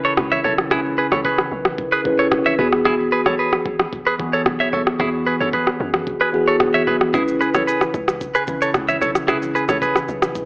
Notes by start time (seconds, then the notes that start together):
Already playing: C#3 C#4 E4 A#4
0.00 B4
0.05 A4 C#5
0.17 C#2, cross-stick, low conga
0.32 C#5 E5, high conga
0.44 B1 A4 C#5, low conga
0.58 cross-stick, high conga
0.70 C#2 C#3 C#4 E4 G#4 B4, kick, cross-stick, low conga
0.86 high conga
0.98 G#4 B4
1.12 C#2 A4 C#5, cross-stick, high conga
1.25 G#4 B4, kick
1.38 cross-stick, high conga
1.52 B1
1.65 cross-stick, high conga
1.78 kick, low conga
1.92 G#4 B4
2.04 C#3 C#4 E4 B4, kick, high conga
2.19 A4 C#5
2.32 kick, cross-stick, low conga
2.46 C#5 E5, high conga
2.57 E2 E3 B3 F#4 G#4 B4, low conga
2.73 cross-stick, high conga
2.85 E4 G#4, kick, cross-stick, low conga
3.01 high conga
3.12 G#4 B4
3.26 B1 A4 C#5, cross-stick, high conga
3.39 G#4 B4
3.53 cross-stick, high conga
3.66 G#1, kick
3.79 cross-stick, high conga
3.93 kick, low conga
4.07 G#4 B4
4.18 E3 B3 F#4 G#4, kick, high conga
4.33 A4 C#5
4.46 B1, cross-stick, low conga
4.60 C#5 E5, high conga
4.73 B1 A4 C#5, low conga
4.87 cross-stick, high conga
4.99 E2 E3 B3 E4 F#4 G#4, kick, cross-stick, low conga
5.27 G#4 B4
5.40 F#2 A4 C#5, high conga
5.53 G#4 B4, kick
5.67 cross-stick, high conga
5.80 F#2
5.94 cross-stick, high conga
6.07 kick, low conga
6.21 G#4 B4
6.32 E3 B3 F#4 G#4, high conga
6.48 A4 C#5
6.60 kick, cross-stick, low conga
6.74 C#5 E5, high conga
6.87 B1 G#4 B4, low conga
7.01 cross-stick, high conga
7.13 C#2 C#3 C#4 E4 G#4 B4, kick, cross-stick, low conga, shaker
7.28 high conga, shaker
7.41 G#4 B4, shaker
7.54 B1 A4 C#5, cross-stick, high conga, shaker
7.67 G#4 B4, shaker
7.81 cross-stick, high conga, shaker
7.94 C#2, kick, shaker
8.08 cross-stick, high conga, shaker
8.21 kick, low conga, shaker
8.35 G#4 B4, shaker
8.47 C#3 C#4 E4 B4, kick, high conga, shaker
8.62 A4 C#5, shaker
8.74 C#2, cross-stick, low conga, shaker
8.88 C#5 E5, high conga, shaker
9.01 B1 A4 C#5, low conga, shaker
9.15 cross-stick, high conga, shaker
9.27 C#2 C#3 C#4 E4 G#4 B4, kick, cross-stick, low conga, shaker
9.42 high conga, shaker
9.55 G#4 B4, shaker
9.69 C#2 A4 C#5, cross-stick, high conga, shaker
9.82 G#4 B4, kick, shaker
9.96 cross-stick, high conga, shaker
10.08 B1, shaker
10.22 cross-stick, high conga, shaker
10.35 kick, low conga, shaker